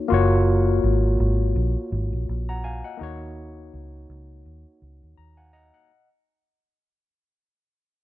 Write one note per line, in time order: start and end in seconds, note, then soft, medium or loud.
0.08 0.80 F#1 loud
0.08 2.95 A#3 medium
0.08 2.96 F4 medium
0.08 2.97 F#4 medium
0.14 2.98 C#5 medium
0.84 1.17 G#1 medium
1.20 1.53 G#1 medium
1.56 1.74 A#1 medium
1.92 2.11 G#1 medium
2.13 2.27 A#1 medium
2.29 2.81 A#1 medium
2.49 2.64 F#5 medium
2.49 2.64 A#5 medium
2.64 2.84 F5 medium
2.64 2.83 G#5 medium
2.84 3.19 D#5 medium
2.84 3.19 F#5 medium
2.97 3.69 D#2 loud
2.97 5.84 A#3 medium
2.97 5.85 D#4 medium
3.01 5.86 F#4 medium
3.01 5.87 C#5 medium
3.74 4.06 C#2 medium
4.10 4.42 C#2 medium
4.46 4.64 D#2 medium
4.82 5.00 C#2 medium
5.02 5.16 D#2 medium
5.17 5.70 D#2 medium
5.17 5.36 A#5 medium
5.37 5.53 F5 soft
5.37 5.52 F#5 medium
5.37 5.52 G#5 medium
5.53 5.73 D#5 medium
5.53 5.73 F#5 medium
5.53 5.73 A#5 medium
5.74 6.08 D#5 soft
5.74 6.08 F#5 medium